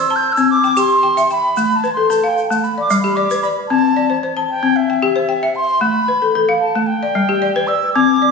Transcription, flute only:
0.00 0.17 E6 loud
0.16 0.34 G6 loud
0.33 0.50 E6 loud
0.50 0.80 D6 medium
0.79 1.31 C6 medium
1.32 1.77 B5 medium
1.76 1.93 A5 medium
1.94 2.12 C6 medium
2.10 2.30 A5 medium
2.29 2.46 G5 medium
2.47 2.65 A5 medium
2.64 2.80 B5 medium
2.81 2.97 D6 medium
2.99 3.17 B5 medium
3.16 3.42 D6 medium
3.42 3.48 B5 medium
3.68 4.18 A5 loud
4.50 4.78 G5 medium
4.76 5.57 E5 medium
5.55 5.82 C6 loud
5.81 6.35 B5 medium
6.61 6.82 A5 medium
6.82 6.88 A5 medium
6.87 7.69 G5 medium
7.67 7.93 E6 medium
7.94 8.31 D6 loud

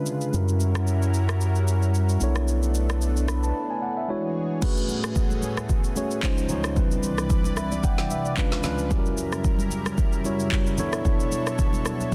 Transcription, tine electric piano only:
0.00 0.33 G#3 medium
0.00 0.32 C#4 medium
0.00 0.34 D4 medium
0.00 0.34 F4 medium
0.00 0.38 B4 medium
0.32 2.17 G3 medium
0.32 2.17 C#4 medium
0.32 2.18 E4 medium
0.32 2.18 F#4 medium
0.32 2.19 A#4 medium
2.20 4.04 B3 medium
2.20 4.05 D4 medium
2.20 4.05 E4 medium
2.20 4.06 A4 medium
2.20 4.06 C#5 medium
3.29 3.43 B5 medium
3.43 3.69 A5 medium
3.70 3.82 G#5 medium
3.82 3.96 F#5 medium
3.97 4.22 E5 medium
4.08 4.62 G#3 medium
4.08 4.62 D4 medium
4.08 4.62 E4 medium
4.08 4.61 F#4 medium
4.08 4.63 C#5 medium
4.62 5.48 A3 medium
4.62 5.48 C#4 medium
4.62 5.49 F#4 medium
4.62 5.49 G#4 medium
4.62 5.49 B4 medium
5.96 6.23 A3 medium
5.96 6.22 C#4 medium
5.96 6.23 F#4 medium
5.96 6.23 G#4 medium
5.96 6.24 C#5 medium
6.22 6.45 G#3 medium
6.22 6.45 C#4 medium
6.22 6.45 D#4 medium
6.22 6.45 F4 medium
6.22 6.46 C5 loud
6.49 6.71 G#3 medium
6.49 6.72 C#4 medium
6.49 6.72 D#4 medium
6.49 6.72 F4 medium
6.49 6.72 C#5 loud
6.76 7.63 G3 medium
6.76 7.63 C4 medium
6.76 7.63 D4 medium
6.76 7.63 E4 medium
6.76 7.63 B4 medium
7.57 7.71 E5 medium
7.57 7.82 B5 medium
7.72 7.83 D5 medium
7.84 7.98 F#5 medium
7.84 7.98 G5 medium
7.99 8.10 G5 medium
8.11 8.36 E5 medium
8.26 8.51 D5 medium
8.37 8.59 G#3 medium
8.37 8.59 C#4 medium
8.37 8.59 D4 medium
8.37 8.60 F4 medium
8.37 8.60 B4 loud
8.37 8.62 F5 medium
8.63 8.86 G#3 medium
8.63 8.86 C#4 medium
8.63 8.86 D4 medium
8.63 8.86 F4 medium
8.63 8.87 B4 medium
8.63 8.89 F5 medium
8.90 9.77 G3 medium
8.90 9.77 C#4 medium
8.90 9.77 E4 medium
8.90 9.77 F#4 medium
8.90 8.98 G4 medium
8.98 9.81 A#4 medium
10.24 10.68 G3 medium
10.24 10.69 C#4 medium
10.24 10.69 E4 medium
10.24 10.69 F#4 medium
10.24 10.69 C#5 medium
10.78 11.64 B3 medium
10.78 11.65 D4 medium
10.78 11.65 E4 medium
10.78 11.65 A4 medium
10.78 11.65 C#5 loud

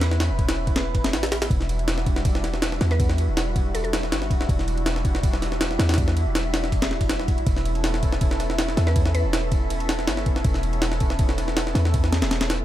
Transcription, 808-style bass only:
0.00 0.32 E2 loud
0.30 1.15 E1 medium
1.13 1.49 A1 medium
1.50 2.79 E1 medium
2.81 3.30 E2 medium
3.28 4.13 E1 medium
4.11 4.32 G1 loud
4.30 4.47 D1 loud
4.49 5.78 E1 loud
5.79 6.27 E2 loud
6.26 7.30 E1 medium
7.28 7.40 D1 loud
7.38 7.46 B1 loud
7.47 8.76 E1 loud
8.77 9.26 E2 medium
9.24 10.09 E1 medium
10.07 10.28 G1 loud
10.26 10.43 E1 loud
10.45 11.74 E1 loud
11.75 12.24 E2 medium
12.22 12.65 E1 medium

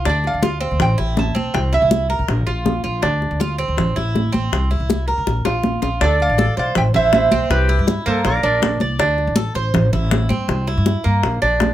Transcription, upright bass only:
0.06 0.32 D2 loud
0.34 0.69 D2 medium
0.71 0.79 D2 medium
0.80 0.98 A1 loud
0.99 1.34 A1 medium
1.36 1.53 B1 medium
1.54 1.81 C2 loud
1.82 2.17 C2 medium
2.19 2.28 B1 medium
2.28 2.46 A#1 loud
2.48 2.83 A#1 medium
2.84 3.02 A#1 medium
3.03 3.30 D2 loud
3.31 3.66 D2 medium
3.68 3.77 D2 medium
3.77 3.95 A1 loud
3.97 4.32 A1 medium
4.34 4.51 A1 medium
4.52 4.79 C2 loud
4.80 5.15 C2 medium
5.18 5.26 C2 medium
5.27 5.45 A#1 medium
5.46 5.81 A#1 medium
5.83 6.00 A#1 medium
6.01 6.28 D2 medium
6.29 6.47 A1 loud
6.57 6.75 B1 medium
6.76 6.94 A1 loud
6.95 7.30 A1 medium
7.32 7.50 B1 medium
7.50 7.77 C2 loud
7.79 7.96 G2 loud
8.07 8.24 G2 medium
8.25 8.42 A#1 loud
8.43 8.79 A#1 medium
8.81 8.98 C2 medium
8.99 9.26 D2 medium
9.27 9.45 A1 medium
9.55 9.73 A1 medium
9.75 9.92 A1 loud
9.93 10.28 A1 medium
10.30 10.48 G2 medium
10.48 10.75 C2 loud
10.77 10.95 G2 medium
11.05 11.23 G2 medium
11.23 11.41 A#1 loud
11.42 11.74 A#1 medium

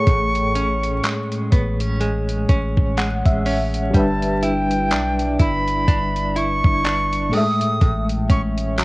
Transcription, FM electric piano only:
0.00 3.40 A2 medium
0.00 3.41 A3 medium
0.00 3.43 G#4 medium
0.00 3.47 C#5 medium
2.98 3.24 F#5 medium
3.26 3.90 E5 medium
3.91 7.27 G3 medium
3.91 7.28 D4 medium
3.96 7.30 B4 medium
3.96 7.31 E5 medium
7.29 8.85 A2 medium
7.29 8.85 A3 medium
7.35 8.85 G#3 medium
7.35 8.85 E5 medium

